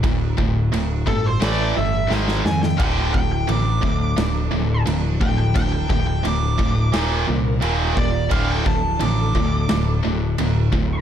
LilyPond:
<<
  \new Staff \with { instrumentName = "Lead electric guitar" } { \time 4/4 \key d \minor \tempo 4 = 87 r4. a'16 c''16 d''8 e''8 r8 gis''16 g''16 | g''16 g''16 g''16 g''16 d'''2 r8 g''16 g''16 | g''16 g''16 g''16 g''16 d'''2 r8 d''8 | f''16 g''16 a''8 d'''2. | }
  \new Staff \with { instrumentName = "String section" } { \time 4/4 \key d \minor r1 | <f d' a'>1~ | <f d' a'>2 <ees bes bes'>2 | <f d' a'>1 | }
  \new Staff \with { instrumentName = "Distorted electric guitar" } { \clef bass \time 4/4 \key d \minor <d, a,>8 <d, a,>8 <d, a,>8 <d, a,>8 <a, e a>8 <a, e>8 <gis, dis gis>8 <gis, dis>8 | <d, a, d>8 <d, a,>8 <d, a,>8 <d, a,>8 <d, a,>8 <d, a,>8 <d, a,>8 <d, a,>8 | <d, a,>8 <d, a,>8 <d, a,>8 <d, a,>8 <ees, bes, ees>8 <ees, bes,>8 <ees, bes, ees>8 <ees, bes,>8 | <d, a, d>8 <d, a,>8 <d, a,>8 <d, a,>8 <d, a,>8 <d, a,>8 <d, a,>8 <d, a,>8 | }
  \new Staff \with { instrumentName = "Distorted electric guitar" } { \clef bass \time 4/4 \key d \minor <d, a,>8 <d, a,>8 <d, a,>8 <d, a,>8 <a, e a>8 <a, e>8 <gis, dis gis>8 <gis, dis>8 | <d, a, d>8 <d, a,>8 <d, a,>8 <d, a,>8 <d, a,>8 <d, a,>8 <d, a,>8 <d, a,>8 | <d, a,>8 <d, a,>8 <d, a,>8 <d, a,>8 <ees, bes, ees>8 <ees, bes,>8 <ees, bes, ees>8 <ees, bes,>8 | <d, a, d>8 <d, a,>8 <d, a,>8 <d, a,>8 <d, a,>8 <d, a,>8 <d, a,>8 <d, a,>8 | }
  \new Staff \with { instrumentName = "Picked electric bass" } { \clef bass \time 4/4 \key d \minor d,,8 d,,8 d,,8 g,,8 a,,8 g,,8 gis,,8 f,8 | d,,8 d,,8 a,,8 d,8 d,,8 d,,8 d,,8 d,,8 | d,,8 d,,8 d,,8 d,,8 ees,,8 c,8 ees,,8 ees,,8 | d,,8 d,,8 a,,8 d,8 d,,8 d,,8 d,,8 d,,8 | }
  \new DrumStaff \with { instrumentName = "Drums" } \drummode { \time 4/4 <cymc bd>8 bd8 cymc8 bd8 <cymc sn>4 sn16 sn16 sn16 sn16 | <cymc bd>8 bd8 cymc8 bd8 <cymc sn>4 cymc8 bd8 | <cymc bd>8 bd8 cymc8 bd8 <cymc sn>4 cymc8 bd8 | <cymc bd>8 bd8 cymc8 bd8 <cymc sn>4 cymc8 bd8 | }
>>